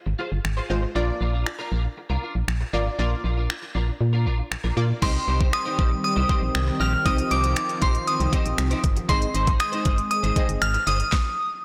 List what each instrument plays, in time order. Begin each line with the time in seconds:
0.06 fm bass G#1, muted clean electric guitar stroke
0.19 clean electric guitar F4 G#4 C5
0.32 fm bass G1, muted clean electric guitar stroke
0.44 fm bass G#1, finger snap, muted clean electric guitar stroke
0.57 clean electric guitar F4 G#4 C5
0.70 fm bass G#1, synth stab G#3 F4 C5, muted clean electric guitar stroke
0.82 muted clean electric guitar stroke
0.95 fm bass A#1, synth stab A#3 F4 D5, clean electric guitar D4 F4 A#4
1.08 muted clean electric guitar stroke
1.21 fm bass A#1, clean electric guitar D4 F4 A#4
1.33 clean electric guitar D4 F4 A#4
1.46 finger snap, muted clean electric guitar stroke
1.59 clean electric guitar D4 F4 A#4
1.71 fm bass A#1, clean electric guitar D4 F4 A#4
1.84 muted clean electric guitar stroke
1.97 muted clean electric guitar stroke
2.10 fm bass C2, clean electric guitar D4 F4 A#4
2.22 clean electric guitar D4 F4 A#4
2.35 fm bass A#1, muted clean electric guitar stroke
2.48 fm bass A#1, finger snap
2.61 muted clean electric guitar stroke
2.73 fm bass G#1, synth stab A#3 F4 D5, clean electric guitar D4 F4 A#4
2.86 muted clean electric guitar stroke
2.99 fm bass A#1, synth stab A#3 F4 D5, clean electric guitar D4 F4 A#4
3.11 muted clean electric guitar stroke
3.24 fm bass A#1, clean electric guitar D4 F4 A#4
3.37 clean electric guitar D4 F4 A#4
3.50 finger snap
3.62 muted clean electric guitar stroke
3.75 fm bass A#1, clean electric guitar D4 F4 A#4
3.88 muted clean electric guitar stroke
4.00 fm bass A#2, muted clean electric guitar stroke
4.13 clean electric guitar D4 F4 A#4
4.26 fm bass A#1, clean electric guitar D4 F4 A#4
4.39 muted clean electric guitar stroke
4.51 fm bass A#1, finger snap, muted clean electric guitar stroke
4.64 fm bass A#1, clean electric guitar D4 F4 A#4
4.77 fm bass A#2, synth stab A#3 F4 D5, muted clean electric guitar stroke
4.89 muted clean electric guitar stroke
5.02 fm bass C2, supersaw synth D#3 G3 C4, synth stab C4 G4 D#5, clean electric guitar D#4 G4 C5, synth bell C6, kick, crash
5.15 muted clean electric guitar stroke
5.27 fm bass C2, clean electric guitar D#4 G4 C5
5.40 clean electric guitar D#4 G4 C5, kick
5.53 synth bell D#6, finger snap, muted clean electric guitar stroke
5.65 clean electric guitar D#4 G4 C5
5.78 fm bass A#1, clean electric guitar D#4 G4 C5, kick
5.91 muted clean electric guitar stroke
6.04 synth bell D#6, muted clean electric guitar stroke
6.16 fm bass C2, clean electric guitar D#4 G4 C5
6.29 synth stab C4 G4 C5, clean electric guitar D#4 G4 C5, kick
6.42 fm bass A#1, muted clean electric guitar stroke
6.55 fm bass C2, finger snap
6.67 muted clean electric guitar stroke
6.80 fm bass A#1, clean electric guitar D#4 G4 C5, synth bell F6
6.93 muted clean electric guitar stroke
7.05 fm bass C2, supersaw synth F3, synth stab C4 G4 D#5, clean electric guitar D#4 G4 C5, synth bell D#6, kick, closed hi-hat
7.18 muted clean electric guitar stroke, closed hi-hat
7.31 fm bass C2, clean electric guitar D#4 G4 C5, synth bell D6, closed hi-hat
7.43 clean electric guitar D#4 G4 C5, closed hi-hat
7.56 finger snap, closed hi-hat
7.69 muted clean electric guitar stroke, closed hi-hat
7.81 fm bass A#1, clean electric guitar D#4 G4 C5, synth bell C6, kick, closed hi-hat
7.94 muted clean electric guitar stroke, closed hi-hat
8.07 synth bell D#6, muted clean electric guitar stroke, closed hi-hat
8.20 fm bass C2, clean electric guitar D#4 G4 C5, closed hi-hat
8.32 synth stab C4 G4 D#5, clean electric guitar D#4 G4 C5, kick, closed hi-hat
8.45 fm bass A#1, muted clean electric guitar stroke, closed hi-hat
8.58 fm bass C2, finger snap, muted clean electric guitar stroke, closed hi-hat
8.70 clean electric guitar D#4 G4 C5, closed hi-hat
8.83 fm bass G1, muted clean electric guitar stroke, kick, closed hi-hat
8.96 muted clean electric guitar stroke, closed hi-hat
9.09 fm bass G#1, supersaw synth G#3, synth stab C4 G#4 D#5, clean electric guitar D#4 G#4 C5, synth bell C6, kick, closed hi-hat
9.21 muted clean electric guitar stroke, closed hi-hat
9.34 fm bass G#1, clean electric guitar D#4 G#4 C5, closed hi-hat
9.47 clean electric guitar D#4 G#4 C5, kick, closed hi-hat
9.60 synth bell D#6, finger snap, muted clean electric guitar stroke, closed hi-hat
9.72 clean electric guitar D#4 G#4 C5, closed hi-hat
9.85 fm bass G1, clean electric guitar D#4 G#4 C5, kick, closed hi-hat
9.98 muted clean electric guitar stroke, closed hi-hat
10.11 synth bell D#6, muted clean electric guitar stroke, closed hi-hat
10.23 fm bass G#1, clean electric guitar D#4 G#4 C5, closed hi-hat
10.36 synth stab C4 G#4 D#5, clean electric guitar D#4 G#4 C5, kick, closed hi-hat
10.49 fm bass G1, muted clean electric guitar stroke, closed hi-hat
10.62 fm bass G#1, synth bell F6, finger snap, closed hi-hat
10.74 muted clean electric guitar stroke, closed hi-hat
10.87 fm bass G1, clean electric guitar D#4 G#4 C5, synth bell D#6, closed hi-hat
11.00 muted clean electric guitar stroke, closed hi-hat
11.12 kick, snare